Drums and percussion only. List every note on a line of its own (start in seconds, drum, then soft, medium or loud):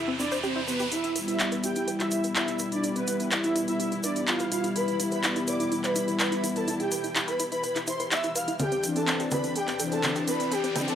0.19 shaker medium
0.31 shaker medium
0.43 shaker soft
0.68 shaker medium
0.79 shaker medium
0.92 closed hi-hat medium
0.92 shaker soft
1.04 closed hi-hat soft
1.04 shaker soft
1.16 closed hi-hat loud
1.16 shaker medium
1.28 closed hi-hat soft
1.28 shaker soft
1.40 clap loud
1.40 closed hi-hat medium
1.40 shaker soft
1.52 closed hi-hat soft
1.52 shaker soft
1.64 closed hi-hat loud
1.64 shaker medium
1.75 closed hi-hat soft
1.75 shaker soft
1.88 closed hi-hat medium
1.88 shaker soft
2.00 clap soft
2.00 closed hi-hat soft
2.00 shaker soft
2.11 closed hi-hat loud
2.11 shaker medium
2.24 closed hi-hat soft
2.24 shaker soft
2.36 clap loud
2.36 closed hi-hat medium
2.36 shaker soft
2.48 closed hi-hat soft
2.48 shaker soft
2.59 closed hi-hat loud
2.59 shaker loud
2.72 closed hi-hat soft
2.72 shaker soft
2.84 closed hi-hat medium
2.84 shaker soft
2.96 closed hi-hat soft
2.96 shaker soft
3.07 closed hi-hat loud
3.07 shaker medium
3.20 closed hi-hat soft
3.20 shaker soft
3.31 clap loud
3.31 closed hi-hat medium
3.31 shaker medium
3.44 closed hi-hat soft
3.44 shaker soft
3.56 closed hi-hat loud
3.56 shaker medium
3.68 closed hi-hat soft
3.68 shaker soft
3.80 closed hi-hat medium
3.80 shaker medium
3.92 closed hi-hat soft
3.92 shaker soft
4.03 closed hi-hat loud
4.03 shaker loud
4.16 closed hi-hat soft
4.16 shaker soft
4.28 clap loud
4.28 closed hi-hat medium
4.28 shaker soft
4.39 closed hi-hat soft
4.39 shaker soft
4.52 closed hi-hat loud
4.52 shaker medium
4.64 closed hi-hat medium
4.64 shaker soft
4.76 closed hi-hat medium
4.76 shaker soft
4.88 closed hi-hat soft
4.88 shaker soft
5.00 closed hi-hat loud
5.00 shaker medium
5.11 closed hi-hat soft
5.11 shaker soft
5.23 clap loud
5.23 closed hi-hat medium
5.23 shaker soft
5.36 closed hi-hat soft
5.36 shaker soft
5.47 closed hi-hat loud
5.47 shaker medium
5.60 closed hi-hat soft
5.60 shaker soft
5.72 closed hi-hat medium
5.72 shaker soft
5.84 clap soft
5.84 closed hi-hat soft
5.84 shaker soft
5.96 closed hi-hat loud
5.96 shaker loud
6.08 closed hi-hat soft
6.08 shaker soft
6.19 clap loud
6.19 closed hi-hat medium
6.19 shaker medium
6.32 closed hi-hat soft
6.32 shaker soft
6.44 closed hi-hat loud
6.44 shaker loud
6.56 closed hi-hat soft
6.56 shaker soft
6.68 closed hi-hat medium
6.68 shaker medium
6.80 closed hi-hat soft
6.80 shaker soft
6.92 closed hi-hat loud
6.92 shaker medium
7.04 closed hi-hat soft
7.04 shaker soft
7.16 clap loud
7.16 closed hi-hat medium
7.16 shaker medium
7.28 closed hi-hat soft
7.28 shaker soft
7.40 closed hi-hat loud
7.40 shaker medium
7.52 closed hi-hat soft
7.52 shaker soft
7.64 closed hi-hat medium
7.64 shaker medium
7.75 clap soft
7.75 closed hi-hat soft
7.75 shaker soft
7.87 closed hi-hat loud
7.87 shaker medium
8.00 closed hi-hat soft
8.00 shaker soft
8.12 clap loud
8.12 closed hi-hat medium
8.12 shaker soft
8.23 closed hi-hat soft
8.23 shaker soft
8.36 closed hi-hat loud
8.36 shaker loud
8.48 closed hi-hat medium
8.48 shaker soft
8.59 closed hi-hat medium
8.59 low conga medium
8.59 shaker medium
8.72 closed hi-hat soft
8.72 shaker soft
8.84 closed hi-hat loud
8.84 shaker medium
8.96 closed hi-hat soft
8.96 shaker soft
9.08 clap loud
9.08 closed hi-hat medium
9.08 shaker soft
9.20 closed hi-hat soft
9.20 shaker soft
9.31 closed hi-hat loud
9.31 low conga loud
9.31 shaker medium
9.44 closed hi-hat soft
9.44 shaker soft
9.56 closed hi-hat medium
9.56 shaker soft
9.68 clap soft
9.68 closed hi-hat soft
9.68 shaker soft
9.79 closed hi-hat loud
9.79 shaker medium
9.92 closed hi-hat soft
9.92 shaker soft
10.03 clap loud
10.03 closed hi-hat medium
10.03 low conga medium
10.03 shaker medium
10.15 closed hi-hat soft
10.15 shaker soft
10.28 closed hi-hat loud
10.28 shaker medium
10.40 closed hi-hat soft
10.40 shaker soft
10.52 closed hi-hat medium
10.52 shaker soft
10.64 closed hi-hat soft
10.64 shaker soft
10.76 closed hi-hat loud
10.76 low conga loud
10.76 shaker medium
10.88 closed hi-hat soft
10.88 shaker soft